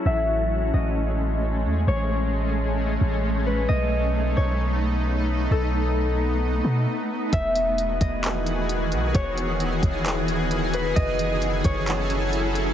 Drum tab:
HH |--------|--------|--------|--------|
CP |--------|--------|--------|--------|
BD |--------|--------|--------|--------|

HH |xxxxxxxx|xxxxxxxx|xxxxxxxx|
CP |----x---|----x---|----x---|
BD |o--o----|o--o----|o--o----|